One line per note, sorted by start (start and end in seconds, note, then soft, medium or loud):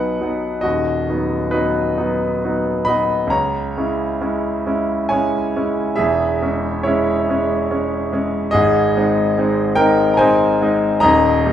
0.00 0.21 F#3 soft
0.00 0.22 B3 soft
0.00 0.22 D#4 soft
0.00 0.60 B4 medium
0.00 0.63 F#5 medium
0.21 0.61 F#3 soft
0.21 0.62 B3 soft
0.21 0.61 D#4 soft
0.61 1.07 D#1 soft
0.61 1.07 D#2 soft
0.61 1.48 F#4 medium
0.61 1.51 D#5 medium
1.09 1.49 F#3 soft
1.09 1.49 B3 soft
1.09 1.49 D#4 soft
1.51 1.94 F#3 soft
1.51 1.95 B3 soft
1.51 1.96 D#4 medium
1.51 2.42 B4 medium
1.98 2.38 F#3 soft
1.98 2.38 B3 soft
1.98 2.38 D#4 soft
2.44 2.84 F#3 soft
2.44 2.85 B3 soft
2.44 2.85 D#4 soft
2.85 3.29 F#3 soft
2.85 3.29 D#5 medium
2.85 3.31 B5 medium
2.89 3.29 B3 soft
2.89 3.30 D#4 soft
3.27 3.73 C#2 medium
3.27 5.07 C#5 medium
3.27 5.10 A#5 medium
3.77 4.18 G#3 soft
3.77 4.18 C#4 soft
3.77 4.18 E4 soft
4.21 4.62 G#3 soft
4.21 4.62 C#4 soft
4.21 4.63 E4 medium
4.66 5.08 G#3 soft
4.66 5.08 C#4 soft
4.66 5.08 E4 medium
5.09 5.52 G#3 soft
5.09 5.94 C#5 medium
5.09 5.98 G#5 medium
5.13 5.53 C#4 soft
5.13 5.52 E4 soft
5.56 5.95 G#3 soft
5.56 5.95 C#4 soft
5.56 5.96 E4 soft
5.96 6.41 E1 medium
5.96 6.42 E2 medium
5.96 6.81 G#4 medium
5.96 6.84 E5 medium
6.42 6.82 G#3 soft
6.42 6.82 C#4 soft
6.83 7.25 G#3 medium
6.83 7.25 C#4 medium
6.83 7.66 E4 medium
6.83 7.70 C#5 medium
7.29 7.67 G#3 medium
7.29 7.68 C#4 medium
7.71 8.09 G#3 soft
7.71 8.09 C#4 soft
8.12 8.50 G#3 medium
8.12 8.51 C#4 medium
8.51 8.94 G#1 medium
8.51 8.95 G#2 medium
8.51 9.74 G#4 medium
8.51 9.77 D#5 medium
8.97 9.34 G#3 medium
8.97 9.34 C4 medium
8.97 9.34 D#4 medium
9.38 9.75 G#3 medium
9.38 9.76 C4 medium
9.38 9.76 D#4 medium
9.75 10.16 G#3 medium
9.75 10.17 D#4 medium
9.75 10.10 A#4 medium
9.75 10.13 G5 loud
9.80 10.17 C4 medium
10.14 11.03 G#5 loud
10.14 10.20 A#5 medium
10.19 10.58 G#3 medium
10.19 10.59 C4 medium
10.19 10.59 D#4 medium
10.19 11.00 C5 medium
10.61 11.00 G#3 medium
10.61 11.00 C4 medium
10.61 11.01 D#4 medium
11.00 11.44 D#1 medium
11.00 11.45 D#2 medium
11.00 11.53 D#5 medium
11.00 11.53 A#5 loud
11.46 11.53 G3 medium
11.46 11.53 A#3 soft
11.46 11.53 D#4 medium